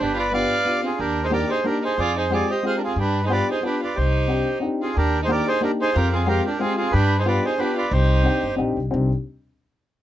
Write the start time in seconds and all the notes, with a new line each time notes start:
0.00 G1 D4 G4 B4
0.17 F4 B4 D5
0.32 B3 D4 F4 G4 B4 D5 F5
0.65 B3 D4 F4 G4
0.83 C4 F4 G#4
0.99 D#2 D4 G4 A#4
1.24 D#4 G#4 C5
1.31 A#3 D4 D#4 G4 A#4 D5
1.50 D#4 G#4 C5
1.64 A#3 D4 D#4 G4 A#4
1.84 D#4 G#4 C5
1.98 F2 F4 G#4 D5
2.17 D#4 G#4 C5
2.29 G#3 C4 F4 G4 G#4
2.34 D5
2.50 G4 C5 D#5
2.63 G#3 C4 F4 G4 C5 F5
2.67 G#4
2.77 D4 A#4
2.84 C4 F4 G#4
2.96 G2 D4 G4
3.01 B4
3.25 B3 D4 D#4 F4 G#4 C5
3.30 F4 G4 B4 D5
3.51 D#4 G#4 C5
3.61 B3 D4 F4 G4
3.66 D4 B4
3.83 F4 B4 D5
3.95 C2 D#4 G4 C5
4.28 C4 D4 D#4 G4
4.60 C4 D4 D#4 G4
4.81 C4 F4 G#4
4.97 D#2 D4 G4 A#4
5.23 D#4 G#4 C5
5.27 A#3 D4 D#4 G4 A#4
5.32 D5
5.48 D#4 G#4 C5
5.61 A#3 D4 D#4 G4 A#4
5.81 D#4 G#4 C5
5.95 F2 F4 G4 A#4
6.13 C4 F4 G#4
6.26 G#3 C4 F4 G4 A#4
6.45 D4 G4 A#4
6.59 G#3 C4 F4 G4 G#4
6.77 C4 F4 G#4
6.92 G2 D4 G4 B4
7.19 D#4 G#4 C5
7.24 B3 D4 F4 G4 B4 D5
7.45 D#4 G#4 C5
7.58 B3 D4 F4 G4 B4
7.77 F4 B4 D5
7.91 C2 D#4 G4 C5
8.23 C4 D4 D#4 G4
8.43 G1
8.56 A#1 C4 D4 D#4 G4
8.77 C2
8.91 C2 C4 D4 D#4 G4